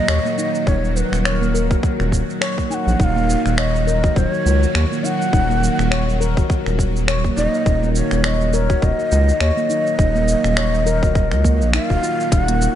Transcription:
0.00 12.32 A#2 medium
0.00 12.31 D#3 medium
0.00 12.32 F#3 medium
0.00 12.32 F#4 medium
0.00 0.69 D#5 loud
0.08 0.19 D#2 medium
0.08 0.24 C#5 medium
0.08 finger snap loud
0.08 shaker soft
0.25 0.32 A#3 medium
0.25 shaker soft
0.38 0.66 D#4 medium
0.38 shaker medium
0.55 shaker soft
0.67 1.03 D#1 loud
0.67 0.76 D#4 medium
0.67 0.98 C#5 loud
0.67 kick loud
0.67 shaker soft
0.85 shaker soft
0.96 1.26 B4 medium
0.96 shaker medium
1.12 1.76 D#1 medium
1.12 finger snap soft
1.12 shaker soft
1.25 1.31 B4 medium
1.25 1.41 C#5 medium
1.25 finger snap medium
1.25 shaker soft
1.30 1.84 A#4 medium
1.42 1.49 A#3 medium
1.42 shaker soft
1.54 1.70 A#4 medium
1.54 shaker medium
1.71 2.27 F#4 medium
1.71 kick loud
1.71 shaker soft
1.83 kick loud
1.83 shaker soft
2.00 2.12 D#1 medium
2.00 finger snap soft
2.00 shaker soft
2.12 2.23 D#1 loud
2.12 kick medium
2.12 shaker medium
2.30 shaker soft
2.41 2.57 C#5 medium
2.41 finger snap loud
2.41 shaker soft
2.58 2.65 A#3 medium
2.58 kick medium
2.58 shaker soft
2.70 2.98 D#4 medium
2.70 3.00 F#5 loud
2.70 2.75 G#5 medium
2.70 shaker medium
2.87 2.95 A#1 medium
2.87 shaker soft
2.99 3.36 D#1 medium
2.99 3.09 D#4 medium
2.99 3.05 F#5 loud
2.99 kick loud
2.99 shaker soft
3.04 3.59 F5 loud
3.16 3.23 A#3 medium
3.16 shaker soft
3.30 shaker medium
3.46 4.09 D#1 medium
3.46 finger snap soft
3.46 shaker soft
3.58 3.74 C#5 medium
3.58 4.18 D#5 loud
3.58 finger snap medium
3.58 shaker soft
3.76 shaker soft
3.87 4.03 A#4 medium
3.87 shaker medium
4.04 4.60 F#4 medium
4.04 kick loud
4.04 shaker soft
4.16 4.27 D#1 medium
4.16 4.27 C5 loud
4.16 kick loud
4.16 shaker soft
4.27 5.06 C#5 loud
4.34 shaker soft
4.46 4.66 C#2 loud
4.46 shaker medium
4.63 shaker soft
4.75 4.86 D#2 medium
4.75 4.90 C#5 medium
4.75 finger snap medium
4.75 shaker soft
4.92 4.99 A#3 medium
4.92 shaker soft
5.04 5.32 D#4 medium
5.04 6.21 F#5 loud
5.04 shaker medium
5.22 shaker soft
5.33 5.69 D#1 loud
5.33 5.42 D#4 medium
5.33 kick loud
5.33 shaker soft
5.49 5.57 A#3 medium
5.49 shaker soft
5.64 shaker medium
5.79 6.43 D#1 medium
5.79 finger snap soft
5.79 shaker soft
5.91 6.07 C#5 medium
5.91 finger snap medium
5.91 shaker soft
6.09 shaker soft
6.21 6.36 A#4 medium
6.21 shaker medium
6.37 6.93 F#4 medium
6.37 kick loud
6.37 shaker soft
6.50 kick loud
6.50 shaker soft
6.66 7.30 D#1 medium
6.66 finger snap soft
6.66 shaker soft
6.79 kick medium
6.79 shaker medium
6.96 shaker soft
7.08 7.23 C#5 medium
7.08 finger snap medium
7.08 shaker soft
7.24 7.32 A#3 medium
7.24 kick medium
7.24 shaker soft
7.37 7.48 D#1 loud
7.37 7.65 D#4 medium
7.37 7.91 D#5 loud
7.37 shaker medium
7.54 shaker soft
7.66 8.02 D#1 medium
7.66 7.75 D#4 medium
7.66 kick loud
7.66 shaker soft
7.82 7.90 A#3 medium
7.82 shaker soft
7.96 8.27 C#5 medium
7.96 shaker medium
8.11 8.76 D#1 medium
8.11 finger snap soft
8.11 shaker soft
8.24 8.40 C#5 medium
8.24 8.56 D#5 loud
8.24 finger snap medium
8.24 shaker soft
8.41 shaker soft
8.53 8.69 A#4 medium
8.53 8.85 C#5 loud
8.53 shaker medium
8.70 9.27 F#4 medium
8.70 kick medium
8.70 shaker soft
8.82 8.93 D#1 loud
8.82 11.74 D#5 loud
8.82 kick medium
8.82 shaker soft
8.99 shaker soft
9.12 9.32 C#2 medium
9.12 shaker medium
9.29 shaker soft
9.40 9.51 D#2 medium
9.40 9.56 C#5 medium
9.40 finger snap medium
9.40 shaker soft
9.57 9.64 A#3 medium
9.57 shaker soft
9.70 9.98 D#4 medium
9.70 shaker medium
9.87 shaker soft
9.99 10.35 D#1 loud
9.99 10.08 D#4 medium
9.99 kick loud
9.99 shaker soft
10.15 10.22 A#3 medium
10.15 shaker soft
10.28 shaker medium
10.44 11.34 D#1 medium
10.44 finger snap soft
10.44 shaker soft
10.57 10.73 C#5 medium
10.57 finger snap loud
10.57 shaker soft
10.75 shaker soft
10.86 11.02 A#4 medium
10.86 shaker medium
11.03 11.60 F#4 medium
11.03 kick loud
11.03 shaker soft
11.15 kick loud
11.15 shaker soft
11.32 11.63 C#2 medium
11.32 finger snap soft
11.32 shaker soft
11.44 11.54 A#3 medium
11.44 kick medium
11.44 shaker medium
11.61 11.79 A#1 medium
11.61 shaker soft
11.73 11.89 D#4 medium
11.73 12.32 F5 loud
11.73 finger snap loud
11.73 shaker soft
11.90 11.98 D#1 medium
11.90 12.02 F#4 medium
11.90 kick medium
11.90 shaker soft
12.03 12.18 F4 medium
12.03 shaker medium
12.20 shaker soft
12.32 12.68 D#1 medium
12.32 12.41 D#4 medium
12.32 12.43 F5 loud
12.32 kick loud
12.32 closed hi-hat medium
12.32 shaker soft
12.43 12.75 F#5 loud
12.48 12.56 A#3 medium
12.48 closed hi-hat soft
12.62 shaker medium

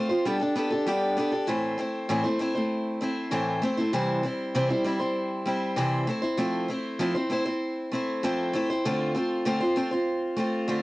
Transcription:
0.09 0.26 C4 soft
0.09 0.26 F4 medium
0.09 0.25 C5 medium
0.25 0.41 G3 medium
0.25 0.41 B3 medium
0.25 0.41 D4 medium
0.25 0.40 G4 medium
0.25 0.39 A4 medium
0.40 0.55 D4 soft
0.40 0.56 G4 medium
0.40 0.55 A4 medium
0.56 0.71 B3 medium
0.56 0.72 D4 medium
0.56 0.71 G4 medium
0.56 0.69 A4 medium
0.70 0.86 D4 soft
0.70 0.87 G4 medium
0.70 0.86 A4 medium
0.86 1.17 G3 medium
0.86 1.15 B3 medium
0.86 1.16 D4 medium
0.86 1.17 G4 medium
0.86 1.18 A4 loud
1.17 1.32 B3 medium
1.17 1.33 D4 medium
1.17 1.32 G4 medium
1.17 1.30 A4 medium
1.32 1.48 D4 soft
1.32 1.48 G4 soft
1.32 1.47 A4 medium
1.47 1.78 A2 medium
1.47 1.78 E3 medium
1.47 1.76 A3 medium
1.47 1.77 C4 medium
1.47 1.78 E4 medium
1.47 1.79 C5 medium
1.78 2.09 A3 medium
1.78 2.09 C4 medium
1.78 2.10 E4 medium
1.78 2.10 C5 medium
2.09 2.24 A2 medium
2.09 2.25 E3 medium
2.09 2.25 A3 medium
2.09 2.24 C4 medium
2.09 2.24 E4 medium
2.09 2.23 C5 medium
2.24 2.38 A3 soft
2.24 2.39 C4 medium
2.24 2.40 E4 medium
2.24 2.39 C5 medium
2.39 2.55 A3 medium
2.39 2.55 C4 medium
2.39 2.55 E4 medium
2.39 2.54 C5 medium
2.55 3.00 A3 soft
2.55 3.01 C4 soft
2.55 3.01 E4 soft
2.55 3.01 C5 soft
3.01 3.31 A3 medium
3.01 3.31 C4 medium
3.01 3.32 E4 medium
3.01 3.32 C5 medium
3.31 3.62 A2 medium
3.31 3.62 E3 medium
3.31 3.61 A3 medium
3.31 3.62 C4 medium
3.31 3.63 E4 medium
3.31 3.63 C5 medium
3.62 3.78 A3 medium
3.62 3.78 C4 medium
3.62 3.77 E4 medium
3.62 3.76 C5 medium
3.77 3.93 A3 medium
3.77 3.93 C4 soft
3.77 3.93 E4 medium
3.77 3.93 C5 medium
3.93 4.24 C3 medium
3.93 4.24 E3 medium
3.93 4.22 G3 medium
3.93 4.23 C4 medium
3.93 4.24 E4 medium
3.93 4.25 C5 medium
4.23 4.54 G3 medium
4.23 4.54 C4 medium
4.23 4.55 E4 medium
4.23 4.55 C5 medium
4.55 4.70 C3 medium
4.55 4.70 E3 medium
4.55 4.70 G3 medium
4.55 4.70 C4 loud
4.55 4.69 E4 loud
4.55 4.68 C5 medium
4.69 4.83 G3 soft
4.69 4.84 C4 medium
4.69 4.85 E4 medium
4.69 4.85 C5 medium
4.84 5.00 G3 medium
4.84 5.00 C4 medium
4.84 5.00 E4 medium
4.84 4.98 C5 medium
5.00 5.44 G3 soft
5.00 5.45 C4 soft
5.00 5.46 E4 medium
5.00 5.46 C5 medium
5.45 5.76 G3 medium
5.45 5.77 C4 medium
5.45 5.77 E4 medium
5.45 5.77 C5 medium
5.76 6.07 C3 medium
5.76 6.08 E3 medium
5.76 6.07 G3 medium
5.76 6.07 C4 loud
5.76 6.08 E4 medium
5.76 6.08 C5 loud
6.07 6.23 A3 medium
6.07 6.23 C4 medium
6.07 6.22 E4 medium
6.07 6.21 C5 medium
6.22 6.38 C4 soft
6.22 6.38 E4 medium
6.22 6.38 C5 medium
6.37 6.69 F3 medium
6.37 6.67 A3 medium
6.37 6.69 C4 medium
6.37 6.69 E4 medium
6.37 6.70 C5 medium
6.68 6.99 A3 medium
6.68 6.99 C4 medium
6.68 7.00 E4 medium
6.68 7.00 C5 medium
6.99 7.15 F3 medium
6.99 7.15 A3 medium
6.99 7.15 C4 medium
6.99 7.15 E4 loud
6.99 7.13 C5 loud
7.15 7.29 C4 soft
7.15 7.31 E4 medium
7.15 7.30 C5 medium
7.30 7.45 A3 medium
7.30 7.46 C4 medium
7.30 7.46 E4 medium
7.30 7.44 C5 medium
7.46 7.92 C4 soft
7.46 7.92 E4 soft
7.46 7.92 C5 medium
7.91 8.22 A3 medium
7.91 8.23 C4 medium
7.91 8.23 E4 medium
7.91 8.24 C5 medium
8.23 8.53 F3 medium
8.23 8.52 A3 medium
8.23 8.53 C4 loud
8.23 8.54 E4 loud
8.23 8.54 C5 medium
8.53 8.69 A3 medium
8.53 8.69 C4 medium
8.53 8.70 E4 medium
8.53 8.68 C5 medium
8.70 8.85 C4 medium
8.70 8.85 E4 medium
8.70 8.84 C5 medium
8.85 9.15 D3 medium
8.85 9.13 A3 medium
8.85 9.14 C4 medium
8.85 9.15 F4 medium
8.85 9.16 C5 medium
9.15 9.45 A3 medium
9.15 9.45 C4 medium
9.15 9.46 F4 medium
9.15 9.46 C5 medium
9.45 9.61 D3 medium
9.45 9.61 A3 medium
9.45 9.61 C4 medium
9.45 9.61 F4 medium
9.45 9.59 C5 loud
9.60 9.76 C4 soft
9.60 9.77 F4 medium
9.60 9.76 C5 medium
9.76 9.91 A3 medium
9.76 9.92 C4 medium
9.76 9.91 F4 medium
9.76 9.90 C5 medium
9.91 10.37 C4 soft
9.91 10.38 F4 medium
9.91 10.37 C5 soft
10.36 10.67 A3 medium
10.36 10.68 C4 medium
10.36 10.68 F4 medium
10.36 10.68 C5 medium
10.68 10.82 D3 medium
10.68 10.82 A3 medium
10.68 10.82 C4 medium
10.68 10.82 F4 medium
10.68 10.82 C5 medium

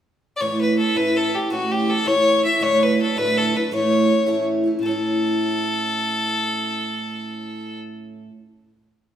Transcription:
0.36 0.42 D5 medium
0.40 0.78 A2 medium
0.40 0.77 E3 medium
0.40 0.78 A3 medium
0.40 0.79 C#4 medium
0.40 0.80 E4 medium
0.40 0.60 C#5 medium
0.61 0.77 B4 medium
0.77 0.95 E3 soft
0.77 0.95 A3 medium
0.77 0.94 C#4 soft
0.77 0.94 E4 medium
0.77 0.98 A4 medium
0.95 1.34 A2 medium
0.95 1.50 E3 medium
0.95 1.35 A3 medium
0.95 1.33 C#4 medium
0.95 1.32 E4 medium
0.95 1.18 B4 medium
1.16 1.36 A4 medium
1.33 1.50 A3 soft
1.33 1.51 C#4 soft
1.33 1.51 E4 soft
1.33 1.51 G4 medium
1.50 1.88 A2 medium
1.50 1.86 E3 medium
1.50 1.88 A3 medium
1.50 1.88 C#4 medium
1.50 1.90 E4 medium
1.50 1.73 F#4 medium
1.72 1.91 G4 medium
1.86 2.05 E3 soft
1.86 2.04 A3 soft
1.86 2.04 C#4 soft
1.86 2.03 E4 medium
1.86 2.09 A4 medium
2.04 2.43 A2 soft
2.04 2.60 E3 medium
2.04 2.45 A3 medium
2.04 2.43 C#4 medium
2.04 2.42 E4 medium
2.04 2.44 C#5 loud
2.42 2.59 A3 soft
2.42 2.61 C#4 soft
2.42 2.60 E4 soft
2.42 2.64 E5 medium
2.60 2.97 D2 medium
2.60 2.98 A2 medium
2.60 2.96 F#3 medium
2.60 2.98 A3 medium
2.60 2.98 D4 medium
2.60 3.00 E4 medium
2.60 2.85 C#5 medium
2.83 2.99 B4 medium
2.97 3.15 F#3 medium
2.97 3.16 A3 soft
2.97 3.15 D4 soft
2.97 3.14 E4 soft
3.01 3.19 A4 medium
3.15 3.54 D2 medium
3.15 3.54 A2 medium
3.15 3.54 F#3 medium
3.15 3.55 A3 medium
3.15 3.53 D4 medium
3.15 3.53 E4 medium
3.15 3.39 B4 loud
3.37 3.58 A4 medium
3.53 3.71 F#3 soft
3.53 3.71 A3 soft
3.53 3.71 D4 soft
3.53 3.71 E4 soft
3.53 3.72 B4 medium
3.71 4.08 A2 medium
3.71 4.08 E3 medium
3.71 4.09 A3 medium
3.71 4.10 C#4 medium
3.71 4.11 E4 medium
3.71 4.44 C#5 medium
4.08 4.26 E3 soft
4.08 4.26 A3 soft
4.08 4.26 C#4 soft
4.08 4.25 E4 soft
4.26 4.64 A2 medium
4.26 4.82 E3 medium
4.26 4.67 A3 medium
4.26 4.65 C#4 medium
4.26 4.63 E4 medium
4.64 4.83 A3 soft
4.64 4.82 C#4 soft
4.64 4.81 E4 soft
4.79 8.29 A2 medium
4.79 8.33 E3 medium
4.79 7.79 A4 medium
4.86 8.36 A3 medium
4.86 8.38 C#4 medium
4.91 8.41 E4 medium

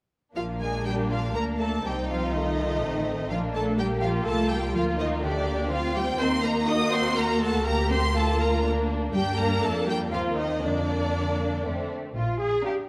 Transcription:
0.36 1.31 A#1 soft
0.36 0.59 F3 soft
0.36 1.31 A#3 soft
0.36 1.80 D4 soft
0.36 0.44 F4 soft
0.36 0.44 F5 soft
0.60 0.85 G#3 soft
0.60 0.85 G#4 soft
0.60 0.85 G#5 soft
0.85 1.10 G3 soft
0.85 1.10 G4 soft
0.85 0.94 G5 soft
1.10 1.35 F3 soft
1.10 1.18 F4 soft
1.10 1.35 F5 soft
1.34 1.84 D2 soft
1.34 1.83 A#3 soft
1.34 1.59 A#3 soft
1.34 1.43 A#4 soft
1.34 1.42 A#5 soft
1.59 1.84 A3 soft
1.59 1.84 A4 soft
1.59 1.84 A5 soft
1.84 2.82 C2 soft
1.84 1.92 G3 soft
1.84 2.33 C4 soft
1.84 2.33 D#4 soft
1.84 1.93 G4 soft
1.84 2.09 G5 soft
2.08 2.33 F3 soft
2.08 2.34 F4 soft
2.08 2.33 F5 soft
2.33 3.30 D#3 soft
2.33 3.30 A3 soft
2.33 3.31 D#4 soft
2.33 2.57 F4 soft
2.33 3.30 D#5 medium
2.58 2.82 F4 soft
2.82 3.30 A1 soft
2.82 3.30 C4 soft
3.30 4.24 A#1 soft
3.30 3.38 F3 soft
3.30 3.77 A#3 soft
3.30 3.78 D4 soft
3.30 3.39 F4 soft
3.30 3.38 F5 soft
3.54 3.78 A3 soft
3.54 3.78 A4 soft
3.54 3.63 A5 medium
3.78 4.02 G3 soft
3.78 4.72 A#3 soft
3.78 3.86 G4 soft
3.78 4.26 G4 soft
3.78 3.86 G5 soft
4.02 4.26 F3 soft
4.02 4.26 F4 soft
4.02 4.10 F5 medium
4.25 4.73 C2 soft
4.25 4.50 A3 soft
4.25 4.72 F4 soft
4.25 4.50 A4 medium
4.25 4.50 A5 medium
4.50 4.74 G3 soft
4.50 4.75 G4 soft
4.50 4.75 G5 medium
4.73 6.20 D2 soft
4.73 4.98 F3 soft
4.73 5.21 A#3 soft
4.73 5.21 F4 soft
4.73 4.98 F4 soft
4.73 4.83 F5 medium
4.97 5.22 D#3 soft
4.97 5.23 D#4 soft
4.97 5.07 D#5 medium
5.22 5.71 D3 soft
5.22 5.47 A3 soft
5.22 5.70 D4 soft
5.22 5.71 G4 soft
5.22 5.70 D5 medium
5.45 5.70 A#3 soft
5.70 5.79 F3 soft
5.70 6.18 C4 soft
5.70 6.19 F4 soft
5.70 5.95 F4 medium
5.70 5.95 F5 medium
5.95 6.03 G3 medium
5.95 6.03 G4 soft
5.95 6.20 G5 medium
6.19 7.62 D#2 medium
6.19 7.63 A#3 medium
6.19 6.43 C4 medium
6.19 6.67 D#4 medium
6.19 6.27 C5 medium
6.19 6.44 C6 medium
6.43 6.51 A#3 soft
6.43 6.51 A#4 soft
6.43 6.68 A#5 medium
6.67 6.76 D#4 medium
6.67 7.65 F#4 medium
6.67 6.91 D#5 medium
6.67 6.92 D#6 medium
6.92 7.16 C4 medium
6.92 7.17 C5 medium
6.92 7.17 C6 medium
7.16 7.41 A#3 soft
7.16 7.40 A#4 soft
7.16 7.42 A#5 medium
7.41 7.65 A3 medium
7.41 7.65 A4 medium
7.41 7.66 A5 medium
7.64 9.09 D2 medium
7.64 8.61 A#3 soft
7.64 7.73 A#3 medium
7.64 8.14 G4 medium
7.64 7.90 A#4 medium
7.64 7.91 A#5 medium
7.90 7.98 C4 medium
7.90 7.98 C5 medium
7.90 8.15 C6 medium
8.14 8.38 A3 soft
8.14 8.64 F4 soft
8.14 8.39 A4 medium
8.14 8.41 A5 medium
8.39 8.63 A#3 soft
8.39 8.64 A#4 soft
8.39 8.65 A#5 medium
8.63 9.11 A#3 soft
8.63 9.11 D4 soft
9.12 9.58 G2 medium
9.12 9.20 G3 soft
9.12 10.07 A#3 medium
9.12 10.07 D4 medium
9.12 9.36 G4 medium
9.12 9.36 G5 medium
9.37 9.61 A#3 medium
9.37 9.61 A#4 medium
9.37 9.62 A#5 medium
9.61 10.11 F2 soft
9.61 9.70 A3 soft
9.61 9.86 A4 medium
9.61 9.87 A5 medium
9.86 10.11 G3 soft
9.86 9.94 G4 soft
9.86 9.97 G5 medium
10.11 10.63 D#2 soft
10.11 10.37 F3 soft
10.11 10.61 A#3 soft
10.11 10.61 C4 soft
10.11 10.36 F4 medium
10.11 10.22 F5 medium
10.37 10.63 D#3 soft
10.37 10.62 D#4 soft
10.37 10.63 D#5 medium
10.62 11.64 F2 soft
10.62 11.91 D3 soft
10.62 11.63 A#3 soft
10.62 11.88 D4 soft
10.62 11.65 D4 soft
10.62 11.91 D5 medium
11.65 11.74 F2 soft
11.65 11.95 A3 soft
11.65 11.95 C4 soft
12.16 12.54 A#1 medium
12.16 12.39 F4 medium
12.41 12.64 G#4 medium
12.64 12.89 D4 soft
12.64 12.73 G4 medium
12.64 12.89 F5 medium
12.64 12.89 A#5 medium

